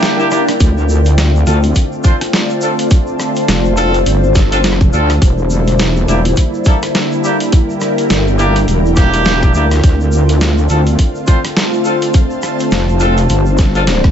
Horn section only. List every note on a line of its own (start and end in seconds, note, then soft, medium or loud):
0.00 0.16 A#3 medium
0.00 0.16 D4 medium
0.00 0.16 E4 medium
0.00 0.16 G4 loud
0.20 0.30 A#3 medium
0.20 0.30 D4 medium
0.20 0.30 E4 medium
0.20 0.30 G4 loud
0.31 0.43 A#3 medium
0.31 0.43 D4 medium
0.31 0.43 E4 medium
0.31 0.43 G4 loud
1.47 1.58 C4 medium
1.47 1.58 D4 medium
1.47 1.58 F4 medium
1.47 1.58 A4 medium
2.04 2.16 C4 medium
2.04 2.16 D4 medium
2.04 2.16 F4 medium
2.04 2.16 C5 medium
2.62 2.74 C4 medium
2.62 2.74 D4 medium
2.62 2.74 F4 medium
2.62 2.74 A4 medium
3.77 3.95 C4 loud
3.77 3.95 D4 medium
3.77 3.95 F4 medium
3.77 3.95 A4 loud
4.52 4.60 C4 medium
4.52 4.60 D4 medium
4.52 4.60 F4 medium
4.52 4.60 A4 loud
4.93 5.11 C4 loud
4.93 5.11 D4 medium
4.93 5.11 F4 medium
4.93 5.11 A4 loud
6.08 6.20 A#3 medium
6.08 6.20 D4 medium
6.08 6.20 E4 medium
6.08 6.20 G4 medium
6.66 6.78 A#3 medium
6.66 6.78 D4 medium
6.66 6.78 E4 medium
6.66 6.78 A4 medium
7.24 7.35 A#3 medium
7.24 7.35 D4 medium
7.24 7.35 E4 medium
7.24 7.35 G4 medium
8.39 8.57 A#3 loud
8.39 8.57 D4 medium
8.39 8.57 E4 medium
8.39 8.57 G4 loud
8.97 9.38 A#3 medium
8.97 9.38 D4 medium
8.97 9.38 E4 medium
8.97 9.38 G4 loud
9.42 9.53 A#3 medium
9.42 9.53 D4 medium
9.42 9.53 E4 medium
9.42 9.53 G4 loud
9.54 9.66 A#3 medium
9.54 9.66 D4 medium
9.54 9.66 E4 medium
9.54 9.66 G4 loud
10.70 10.81 C4 medium
10.70 10.81 D4 medium
10.70 10.81 F4 medium
10.70 10.81 A4 medium
11.27 11.39 C4 medium
11.27 11.39 D4 medium
11.27 11.39 F4 medium
11.27 11.39 C5 medium
11.85 11.97 C4 medium
11.85 11.97 D4 medium
11.85 11.97 F4 medium
11.85 11.97 A4 medium
13.00 13.18 C4 loud
13.00 13.18 D4 medium
13.00 13.18 F4 medium
13.00 13.18 A4 loud
13.75 13.83 C4 loud
13.75 13.83 D4 medium
13.75 13.83 F4 medium
13.75 13.83 A4 loud